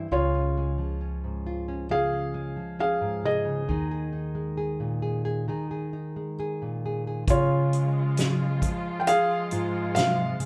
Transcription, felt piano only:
0.12 1.86 F4 medium
0.12 1.96 C#5 medium
1.91 2.76 G#4 medium
1.91 2.79 F5 medium
2.80 3.22 G#4 medium
2.80 3.26 F5 medium
3.25 6.35 G#4 soft
3.25 6.35 D#5 medium
7.30 9.04 F4 medium
7.30 8.97 C#5 medium
9.00 9.07 G5 medium
9.07 10.46 G#4 medium
9.07 9.93 F5 medium
9.95 10.46 F5 medium

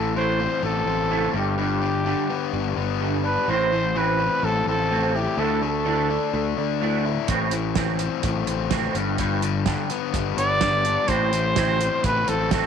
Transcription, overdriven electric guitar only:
0.00 0.88 A2 medium
0.00 0.15 E3 medium
0.16 1.35 E3 medium
0.40 0.86 C4 medium
0.63 1.09 A3 medium
0.87 1.35 C4 medium
1.10 1.35 A3 medium
1.34 1.57 G2 medium
1.58 2.77 G2 medium
1.81 2.04 D3 medium
2.06 3.25 D3 medium
2.30 2.76 B3 medium
2.53 2.99 G3 medium
2.77 3.48 B3 medium
3.01 3.48 G3 medium
3.24 3.48 D4 medium
3.48 4.67 A2 medium
3.72 3.95 E3 medium
3.95 5.38 E3 medium
4.20 4.67 C4 medium
4.44 4.91 A3 medium
4.68 5.39 C4 medium
4.92 5.62 A3 medium
5.15 5.42 E4 medium
5.39 5.85 D3 medium
5.62 6.33 A3 medium
5.86 7.05 D3 medium
6.10 6.57 D4 medium
6.34 6.80 A3 medium
6.58 7.29 D4 medium
6.82 7.29 A3 medium
7.05 7.29 E4 medium
7.29 8.48 A2 medium
7.53 7.75 E3 medium
7.76 8.95 E3 medium
8.00 8.47 C4 medium
8.24 8.71 A3 medium
8.48 8.95 C4 medium
8.73 8.96 A3 medium
8.96 9.18 G2 medium
9.19 10.38 G2 medium
9.44 9.67 D3 medium
9.68 10.86 D3 medium
9.91 10.37 B3 medium
10.15 10.61 G3 medium
10.38 11.09 B3 medium
10.62 11.09 G3 medium
10.86 11.10 D4 medium
11.10 12.28 A2 medium
11.34 11.56 E3 medium
11.57 12.66 E3 medium
11.81 12.26 C4 medium
12.05 12.51 A3 medium
12.28 12.66 C4 medium
12.52 12.66 A3 medium

